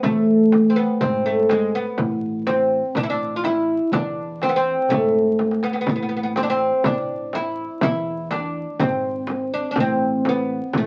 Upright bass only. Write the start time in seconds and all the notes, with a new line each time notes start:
0.04 E2
1.02 G#1
1.98 A1
2.95 A1
3.92 E2
4.91 G#1
5.88 A1
6.85 A1
7.82 E2
8.79 G#1
9.77 A1
10.74 A1